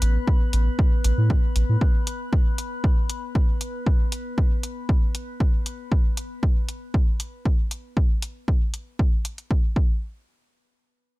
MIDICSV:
0, 0, Header, 1, 4, 480
1, 0, Start_track
1, 0, Tempo, 512821
1, 1698, Time_signature, 4, 2, 24, 8
1, 10480, End_track
2, 0, Start_track
2, 0, Title_t, "Synth texture"
2, 0, Program_c, 0, 99
2, 0, Note_on_c, 0, 59, 79
2, 0, Note_on_c, 0, 71, 81
2, 5547, Note_off_c, 0, 59, 0
2, 5547, Note_off_c, 0, 71, 0
2, 10480, End_track
3, 0, Start_track
3, 0, Title_t, "Sub bass"
3, 0, Program_c, 1, 38
3, 18, Note_on_c, 1, 33, 99
3, 167, Note_off_c, 1, 33, 0
3, 498, Note_on_c, 1, 33, 78
3, 647, Note_off_c, 1, 33, 0
3, 978, Note_on_c, 1, 33, 82
3, 1053, Note_off_c, 1, 33, 0
3, 1101, Note_on_c, 1, 45, 83
3, 1244, Note_off_c, 1, 45, 0
3, 1458, Note_on_c, 1, 33, 92
3, 1533, Note_off_c, 1, 33, 0
3, 1582, Note_on_c, 1, 45, 75
3, 1652, Note_off_c, 1, 45, 0
3, 10480, End_track
4, 0, Start_track
4, 0, Title_t, "Drums"
4, 18, Note_on_c, 9, 42, 80
4, 111, Note_off_c, 9, 42, 0
4, 257, Note_on_c, 9, 36, 101
4, 351, Note_off_c, 9, 36, 0
4, 497, Note_on_c, 9, 42, 69
4, 591, Note_off_c, 9, 42, 0
4, 737, Note_on_c, 9, 36, 118
4, 831, Note_off_c, 9, 36, 0
4, 978, Note_on_c, 9, 42, 79
4, 1071, Note_off_c, 9, 42, 0
4, 1217, Note_on_c, 9, 36, 99
4, 1311, Note_off_c, 9, 36, 0
4, 1457, Note_on_c, 9, 42, 66
4, 1551, Note_off_c, 9, 42, 0
4, 1697, Note_on_c, 9, 36, 109
4, 1791, Note_off_c, 9, 36, 0
4, 1938, Note_on_c, 9, 42, 76
4, 2031, Note_off_c, 9, 42, 0
4, 2177, Note_on_c, 9, 36, 97
4, 2271, Note_off_c, 9, 36, 0
4, 2418, Note_on_c, 9, 42, 65
4, 2511, Note_off_c, 9, 42, 0
4, 2657, Note_on_c, 9, 36, 108
4, 2751, Note_off_c, 9, 36, 0
4, 2897, Note_on_c, 9, 42, 76
4, 2991, Note_off_c, 9, 42, 0
4, 3137, Note_on_c, 9, 36, 100
4, 3231, Note_off_c, 9, 36, 0
4, 3378, Note_on_c, 9, 42, 65
4, 3471, Note_off_c, 9, 42, 0
4, 3617, Note_on_c, 9, 36, 104
4, 3711, Note_off_c, 9, 36, 0
4, 3858, Note_on_c, 9, 42, 72
4, 3951, Note_off_c, 9, 42, 0
4, 4097, Note_on_c, 9, 36, 92
4, 4191, Note_off_c, 9, 36, 0
4, 4338, Note_on_c, 9, 42, 63
4, 4431, Note_off_c, 9, 42, 0
4, 4577, Note_on_c, 9, 36, 104
4, 4671, Note_off_c, 9, 36, 0
4, 4817, Note_on_c, 9, 42, 71
4, 4911, Note_off_c, 9, 42, 0
4, 5057, Note_on_c, 9, 36, 91
4, 5151, Note_off_c, 9, 36, 0
4, 5298, Note_on_c, 9, 42, 60
4, 5391, Note_off_c, 9, 42, 0
4, 5537, Note_on_c, 9, 36, 104
4, 5631, Note_off_c, 9, 36, 0
4, 5778, Note_on_c, 9, 42, 72
4, 5872, Note_off_c, 9, 42, 0
4, 6017, Note_on_c, 9, 36, 91
4, 6111, Note_off_c, 9, 36, 0
4, 6258, Note_on_c, 9, 42, 59
4, 6351, Note_off_c, 9, 42, 0
4, 6497, Note_on_c, 9, 36, 106
4, 6591, Note_off_c, 9, 36, 0
4, 6738, Note_on_c, 9, 42, 71
4, 6831, Note_off_c, 9, 42, 0
4, 6978, Note_on_c, 9, 36, 87
4, 7071, Note_off_c, 9, 36, 0
4, 7218, Note_on_c, 9, 42, 62
4, 7311, Note_off_c, 9, 42, 0
4, 7457, Note_on_c, 9, 36, 106
4, 7551, Note_off_c, 9, 36, 0
4, 7698, Note_on_c, 9, 42, 73
4, 7792, Note_off_c, 9, 42, 0
4, 7938, Note_on_c, 9, 36, 89
4, 8031, Note_off_c, 9, 36, 0
4, 8178, Note_on_c, 9, 42, 61
4, 8271, Note_off_c, 9, 42, 0
4, 8417, Note_on_c, 9, 36, 104
4, 8511, Note_off_c, 9, 36, 0
4, 8657, Note_on_c, 9, 42, 70
4, 8751, Note_off_c, 9, 42, 0
4, 8781, Note_on_c, 9, 42, 28
4, 8875, Note_off_c, 9, 42, 0
4, 8897, Note_on_c, 9, 36, 92
4, 8991, Note_off_c, 9, 36, 0
4, 9137, Note_on_c, 9, 36, 101
4, 9231, Note_off_c, 9, 36, 0
4, 10480, End_track
0, 0, End_of_file